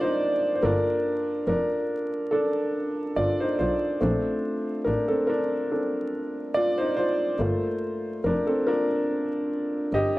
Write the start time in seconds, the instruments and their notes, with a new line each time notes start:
Already playing: upright piano C4 D4 F4 A4 A#4 D5
0.01 upright piano D#4 C5
0.55 upright piano C5
0.62 double bass G1, upright piano A#3 D4 F4 A4 A#4
1.47 double bass F1, upright piano D4 A#4
2.31 upright piano D4 A4
3.16 double bass G1, upright piano F4 D5
3.40 upright piano D#4 C5
3.59 double bass B1, upright piano F4 C5
4.01 double bass A#1, upright piano A3 C4 D4
4.84 double bass A1, upright piano D4 A#4
5.08 upright piano C4 A4
5.27 upright piano D4 A#4
5.71 upright piano C4 D4 A4
6.54 upright piano F4 D5
6.78 upright piano D#4 C5
6.97 upright piano F4 C5
7.40 double bass G1, upright piano A3 A#3 F4
8.24 double bass F1, upright piano D4 A#4
8.47 upright piano C4 A4
8.66 upright piano A#3 D4 F4 A4 A#4
9.93 double bass G1, upright piano G4 D#5